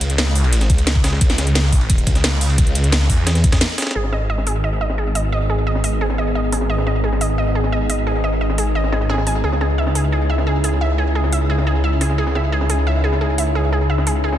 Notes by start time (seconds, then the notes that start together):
Already playing: C#2
0.01 closed hi-hat, ride
0.10 closed hi-hat
0.18 snare, closed hi-hat, ride
0.27 snare
0.35 open hi-hat, ride
0.44 ride
0.53 closed hi-hat, ride
0.61 snare, closed hi-hat
0.70 C#2, kick, closed hi-hat, ride
0.78 closed hi-hat, ride
0.87 snare, closed hi-hat, ride
0.95 kick, ride
1.04 snare, open hi-hat, ride
1.13 snare
1.21 C#2, kick, closed hi-hat, ride
1.30 snare, closed hi-hat
1.38 snare, closed hi-hat, ride
1.47 closed hi-hat
1.55 snare, closed hi-hat, ride
1.64 snare
1.73 kick, open hi-hat, ride
1.81 ride
1.90 kick, closed hi-hat, ride
1.98 closed hi-hat
2.07 C#2, kick, closed hi-hat, ride
2.15 snare, closed hi-hat
2.24 snare, closed hi-hat, ride
2.41 open hi-hat
2.50 ride
2.58 C#2, kick, closed hi-hat, ride
2.67 closed hi-hat
2.75 closed hi-hat, ride
2.84 closed hi-hat
2.92 snare, closed hi-hat, ride
3.01 snare
3.10 E2, kick, open hi-hat, ride
3.27 snare, closed hi-hat, ride
3.35 snare, closed hi-hat
3.44 kick, closed hi-hat, ride
3.52 kick, snare, closed hi-hat, ride
3.61 snare, closed hi-hat
3.69 ride
3.78 snare, open hi-hat, ride
3.82 snare, ride
3.87 snare, ride
3.91 snare, ride
3.95 G#1 B3 D#4 G#4, ride
4.04 snare
4.12 D#5, snare, ride
4.30 D#5, ride
4.38 snare
4.47 G#4, open hi-hat, ride
4.55 ride
4.64 D#5, ride
4.81 D#5, ride
4.90 snare
4.98 G#4, ride
5.15 D#5, open hi-hat
5.24 ride
5.32 D#5, ride
5.50 G#4, ride
5.67 D#5, ride
5.75 snare
5.84 D#5, open hi-hat, ride
5.92 ride
6.01 G#4, ride
6.10 snare
6.18 D#5, ride
6.27 ride
6.35 D#5, ride
6.44 ride
6.52 G#4, snare, open hi-hat, ride
6.61 snare
6.70 D#5, ride
6.78 snare
6.87 D#5, snare, ride
7.04 G#4, ride
7.13 snare
7.21 D#5, open hi-hat, ride
7.30 ride
7.38 D#5, ride
7.55 G#4, ride
7.64 snare
7.72 D#5, ride
7.90 D#5, open hi-hat
7.98 ride
8.07 G#4, ride
8.24 D#5, ride
8.41 D#5, ride
8.50 snare
8.58 G#4, open hi-hat, ride
8.67 ride
8.75 D#5, ride
8.84 snare
8.92 G#4, snare, ride
9.01 snare
9.10 G#4, snare, ride
9.14 snare, ride
9.18 snare
9.27 G#5, snare, open hi-hat, ride
9.35 snare
9.44 C#2 C#4 E4 G#4, ride
9.52 snare
9.61 G#4, snare, ride
9.78 E5, ride
9.87 snare
9.95 G#4, open hi-hat, ride
10.04 ride
10.12 G#4, ride
10.30 E5, ride
10.38 snare
10.47 G#4, ride
10.64 G#4, open hi-hat
10.73 ride
10.81 E5, ride
10.98 G#4, ride
11.15 G#4, ride
11.24 snare
11.32 E5, open hi-hat, ride
11.41 ride
11.50 G#4, ride
11.58 snare
11.67 G#4, ride
11.75 ride
11.84 E5, ride
11.92 ride
12.01 G#4, snare, open hi-hat, ride
12.10 snare
12.18 G#4, ride
12.27 snare
12.35 E5, snare, ride
12.52 G#4, ride
12.61 snare
12.70 G#4, open hi-hat, ride
12.78 ride
12.87 E5, ride
13.04 G#4, ride
13.12 snare
13.21 G#4, ride
13.38 E5, open hi-hat
13.47 ride
13.55 G#4, ride
13.72 G#4, ride
13.90 E5, ride
13.98 snare
14.07 G#4, open hi-hat, ride
14.15 ride
14.24 G#4, ride
14.33 snare